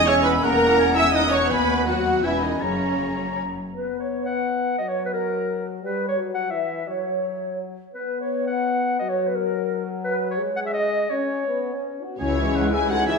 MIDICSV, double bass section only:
0, 0, Header, 1, 2, 480
1, 0, Start_track
1, 0, Tempo, 358852
1, 568, Time_signature, 3, 2, 24, 8
1, 2489, Tempo, 375704
1, 4889, Tempo, 350058
1, 14489, Tempo, 359928
1, 17749, End_track
2, 0, Start_track
2, 0, Title_t, "Double bass section"
2, 0, Program_c, 0, 48
2, 0, Note_on_c, 0, 28, 67
2, 562, Note_off_c, 0, 28, 0
2, 578, Note_on_c, 0, 28, 69
2, 1981, Note_off_c, 0, 28, 0
2, 2011, Note_on_c, 0, 39, 59
2, 2966, Note_off_c, 0, 39, 0
2, 2979, Note_on_c, 0, 28, 48
2, 3442, Note_off_c, 0, 28, 0
2, 3453, Note_on_c, 0, 30, 46
2, 4636, Note_off_c, 0, 30, 0
2, 16443, Note_on_c, 0, 37, 63
2, 16859, Note_off_c, 0, 37, 0
2, 16912, Note_on_c, 0, 37, 52
2, 17326, Note_off_c, 0, 37, 0
2, 17389, Note_on_c, 0, 37, 54
2, 17749, Note_off_c, 0, 37, 0
2, 17749, End_track
0, 0, End_of_file